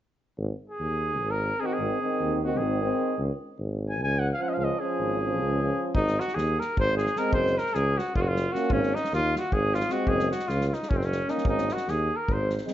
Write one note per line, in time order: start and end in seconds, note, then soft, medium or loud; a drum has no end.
0.37 0.50 G#1 medium
0.70 1.32 G#4 medium
0.79 1.23 D#2 medium
1.21 1.52 G#1 medium
1.31 1.62 A#4 medium
1.60 2.01 D#3 medium
1.60 2.00 C4 soft
1.60 1.67 G#4 medium
1.66 1.74 F#4 medium
1.73 2.39 G#4 medium
1.79 1.91 G#1 medium
2.01 2.42 D#3 medium
2.01 2.42 C4 soft
2.21 2.63 D#2 medium
2.43 2.82 D#3 medium
2.43 2.81 C4 medium
2.43 2.59 F#4 medium
2.57 2.91 G#1 medium
2.57 3.26 G#4 medium
2.82 3.16 D#3 medium
2.82 3.15 C4 medium
3.18 3.30 C#2 medium
3.59 4.03 G#1 medium
3.90 4.00 G#5 medium
4.01 4.31 C#2 medium
4.01 4.21 G#5 medium
4.19 4.28 F#5 medium
4.33 4.43 F5 medium
4.38 4.79 F3 soft
4.38 4.78 C#4 soft
4.38 4.50 F#5 medium
4.49 4.55 D#5 medium
4.54 4.59 F5 medium
4.58 4.70 C#2 medium
4.58 4.65 F5 medium
4.64 4.81 D#5 medium
4.80 5.21 F3 soft
4.80 5.20 C#4 soft
4.80 5.86 G#4 medium
4.99 5.42 G#1 medium
5.21 5.60 F3 soft
5.21 5.59 C#4 soft
5.41 5.70 C#2 medium
5.61 5.95 F3 soft
5.61 5.94 C#4 soft
5.95 6.17 G#1 medium
5.95 6.21 D#4 medium
5.95 kick medium
6.07 snare soft
6.19 6.36 F#4 medium
6.19 snare soft
6.28 snare soft
6.34 6.58 D#2 medium
6.34 6.61 G#4 medium
6.34 snare soft
6.60 6.77 A#4 medium
6.60 snare soft
6.77 7.07 G#1 medium
6.77 6.96 C5 medium
6.77 kick medium
6.97 7.20 G#4 medium
6.97 snare soft
7.06 snare soft
7.15 7.56 G#3 medium
7.15 7.55 C4 medium
7.15 7.33 A#4 medium
7.15 snare soft
7.33 7.56 F#1 medium
7.33 7.60 C5 medium
7.33 kick medium
7.46 snare soft
7.58 7.76 A#4 medium
7.58 snare soft
7.66 snare soft
7.74 7.97 C#2 medium
7.74 7.99 G#4 medium
7.74 snare soft
7.98 8.15 F#4 medium
7.98 snare soft
8.15 8.45 F#1 medium
8.15 8.22 F4 medium
8.15 kick medium
8.21 8.29 F#4 medium
8.27 8.54 F4 medium
8.36 snare soft
8.52 8.93 A#3 medium
8.52 8.93 C#4 medium
8.52 8.73 F#4 medium
8.52 snare soft
8.70 8.93 G#1 medium
8.70 8.96 C#4 medium
8.70 kick medium
8.83 snare soft
8.95 9.12 D#4 medium
8.95 snare soft
9.04 snare soft
9.12 9.35 D#2 medium
9.12 9.35 F4 loud
9.12 snare soft
9.36 9.55 F#4 medium
9.36 snare soft
9.52 9.83 G#1 medium
9.52 9.76 G#4 medium
9.52 kick medium
9.74 9.93 F4 medium
9.74 snare soft
9.80 snare soft
9.88 10.31 G#3 soft
9.88 10.30 C4 medium
9.88 10.10 F#4 medium
9.88 snare soft
10.07 10.31 F#1 medium
10.07 10.31 G#4 medium
10.07 kick medium
10.19 snare soft
10.31 10.49 F#4 medium
10.31 snare soft
10.39 snare soft
10.48 10.72 C#2 medium
10.48 10.67 F4 medium
10.48 snare soft
10.61 snare soft
10.67 10.75 F4 medium
10.73 10.91 D#4 medium
10.73 snare soft
10.82 snare soft
10.89 11.21 F#1 medium
10.89 10.98 C#4 medium
10.89 kick medium
10.96 11.06 C4 medium
11.01 11.31 C#4 medium
11.01 snare soft
11.12 snare soft
11.27 11.68 A#3 soft
11.27 11.68 C#4 soft
11.27 11.47 D#4 medium
11.27 snare soft
11.38 snare soft
11.45 11.69 G#1 medium
11.45 11.74 D#4 medium
11.45 kick medium
11.58 snare soft
11.69 snare soft
11.73 11.91 F#4 medium
11.77 snare soft
11.87 12.10 D#2 medium
11.87 12.18 G#4 medium
11.87 snare soft
12.16 12.34 A#4 medium
12.28 12.59 G#1 medium
12.28 kick medium
12.33 12.52 C5 medium
12.49 snare soft
12.57 snare soft
12.65 12.73 G#3 medium
12.65 12.73 C4 soft
12.65 snare soft